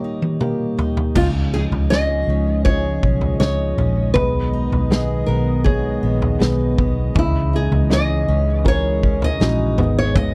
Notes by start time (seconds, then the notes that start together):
Already playing: D#2 A#2 D#3 G3 A#3 G4 A#4 C#5 D#5
0.04 D#4
0.22 high tom
0.41 A#3 G4 A#4, mid tom
0.79 D#4, floor tom
0.97 floor tom
1.15 C#2 C#3 F3 G#3 C#4 F4 D#5, kick, floor tom, crash
1.54 D#4 G#4
1.71 C#2, floor tom
1.90 C#4 F4 G#4 D#5, snare
2.27 C#2 C#4
2.65 C#4 F4 G#4 C#5 D#5, kick
3.03 B1 C#4, kick
3.21 floor tom
3.40 C#2 C#4 D#4 F4 C#5 D#5, snare
3.78 A#1 C#4, floor tom
4.14 B1 B2 D#3 B3 G#4 B4 D#5, kick, floor tom
4.53 D#4
4.72 B1, floor tom
4.90 B3 G#4 D#5, snare
5.26 B1 B3 A#4
5.64 B3 G#4 C#5, kick
6.03 A#1 B3
6.22 floor tom
6.39 B1 B3 D#4 G#4 B4, snare
6.78 B1 B3, kick, floor tom
7.15 C#2 C#3 E3 G#3 C#4 E4 D#5, kick, floor tom
7.53 D#4 G#4
7.71 C#2, floor tom
7.90 C#4 E4 G#4 D#5, snare
8.28 C#2 C#4
8.64 C#4 E4 G#4 A#4 C#5, kick
9.03 C#4, kick
9.22 D#5, floor tom
9.40 A#1 C#4 D#4 E4 F#4, snare
9.77 G#1 G#2 B2 D#3 B3 G#4 D#5, floor tom
9.99 C#5
10.16 G#2 D#5, kick, floor tom